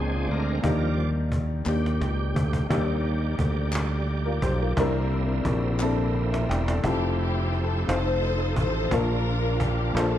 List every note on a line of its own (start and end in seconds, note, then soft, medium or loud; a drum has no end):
0.00 0.26 C#2 medium
0.00 0.59 A#2 medium
0.00 0.61 G#3 soft
0.00 0.38 A#3 medium
0.00 0.61 C4 medium
0.00 0.42 D4 medium
0.00 0.60 D4 medium
0.00 0.39 F4 medium
0.00 0.28 G#4 medium
0.00 0.40 G#4 medium
0.28 0.60 D2 medium
0.28 0.95 A#4 medium
0.28 cajon slap soft
0.62 1.63 D#2 medium
0.62 1.63 D#3 medium
0.62 1.10 F3 medium
0.62 1.10 G3 soft
0.62 1.42 A#3 medium
0.62 1.42 D4 medium
0.62 1.43 D#4 medium
0.62 1.43 G4 medium
0.62 cajon bass loud
0.66 1.11 D5 medium
0.99 cajon slap soft
1.32 cajon bass medium
1.65 1.98 D#2 medium
1.65 2.45 A#3 medium
1.65 2.46 D4 medium
1.65 2.46 D#4 medium
1.65 2.46 G4 medium
1.65 2.18 G4 loud
1.65 cajon slap soft
1.65 clap medium
1.69 cajon slap medium
1.86 cajon slap medium
2.01 2.33 C#2 medium
2.01 cajon slap medium
2.19 2.67 G4 medium
2.35 2.67 D2 medium
2.35 cajon bass medium
2.53 cajon bass medium
2.69 3.35 D#2 medium
2.69 3.70 G3 medium
2.69 4.73 G3 medium
2.69 3.49 A#3 medium
2.69 4.73 A#3 medium
2.69 3.49 D4 medium
2.69 3.50 D#4 medium
2.69 4.73 G4 medium
2.69 3.50 G4 medium
2.69 4.73 D5 medium
2.69 cajon bass loud
3.06 cajon slap soft
3.39 4.38 D2 medium
3.39 cajon bass medium
3.39 cajon slap soft
3.73 cajon slap loud
3.73 clap medium
4.08 cajon slap soft
4.25 4.42 F4 medium
4.25 4.42 A#4 medium
4.42 4.74 B1 medium
4.42 4.59 G4 medium
4.42 4.59 C5 medium
4.42 cajon bass medium
4.61 4.94 F4 medium
4.61 4.78 A#4 medium
4.76 5.42 C2 loud
4.76 5.77 C3 medium
4.76 6.80 D3 medium
4.76 6.80 A#3 medium
4.76 6.80 C4 medium
4.76 5.56 C4 medium
4.76 5.57 D4 medium
4.76 6.80 E4 medium
4.76 5.57 E4 medium
4.76 5.57 A#4 loud
4.76 cajon bass loud
5.11 cajon slap soft
5.45 6.45 A#1 loud
5.45 cajon bass medium
5.80 6.59 C4 medium
5.80 6.60 D4 medium
5.80 6.60 E4 medium
5.80 cajon slap medium
5.80 clap medium
5.82 6.16 A4 medium
5.82 cajon slap medium
6.14 cajon slap soft
6.32 6.49 A#4 medium
6.32 6.49 E5 medium
6.32 cajon slap medium
6.49 6.81 E1 medium
6.49 6.66 D5 medium
6.49 6.66 G5 medium
6.49 cajon slap medium
6.67 6.84 A4 soft
6.67 7.00 D5 medium
6.67 cajon slap medium
6.83 7.84 F1 medium
6.83 7.64 F3 medium
6.83 7.87 F3 medium
6.83 7.87 A3 medium
6.83 7.63 C4 medium
6.83 7.87 C4 medium
6.83 7.84 C4 medium
6.83 7.63 E4 medium
6.83 7.88 E4 medium
6.83 7.84 E4 medium
6.83 7.87 G4 medium
6.83 7.64 G4 medium
6.83 7.17 G4 medium
6.83 7.64 A4 medium
6.83 cajon bass loud
7.19 7.52 G4 medium
7.19 cajon slap soft
7.53 7.88 A4 medium
7.53 cajon slap soft
7.55 cajon slap soft
7.86 8.53 F1 medium
7.86 8.90 F3 medium
7.86 8.92 A3 medium
7.86 8.66 C4 medium
7.86 8.92 C4 medium
7.86 8.67 D#4 medium
7.86 8.92 D#4 medium
7.86 8.88 D#4 medium
7.86 8.67 F4 medium
7.86 7.95 G4 medium
7.86 8.67 A4 medium
7.86 8.89 A4 medium
7.86 8.68 C5 medium
7.86 8.57 C5 loud
7.86 cajon slap loud
7.94 8.95 A4 medium
8.22 cajon slap soft
8.56 8.88 A1 medium
8.56 8.90 C5 loud
8.56 cajon bass medium
8.90 9.91 A#1 loud
8.90 9.91 A#2 medium
8.90 10.18 F3 medium
8.90 9.70 A#3 medium
8.90 10.18 A#3 medium
8.90 9.70 D4 medium
8.90 10.18 D4 medium
8.90 9.92 D4 medium
8.90 9.71 F4 medium
8.90 10.18 F4 medium
8.90 9.92 F4 medium
8.90 9.71 A#4 medium
8.90 9.61 A#4 loud
8.90 9.71 A5 medium
8.90 cajon bass loud
9.27 cajon slap soft
9.60 9.96 G4 medium
9.60 cajon bass medium
9.93 10.18 A#1 medium
9.93 10.18 A#3 medium
9.93 10.18 D4 medium
9.93 10.18 F4 medium
9.93 10.18 A4 medium
9.93 10.18 A4 loud
9.93 10.18 C5 medium
9.93 cajon slap loud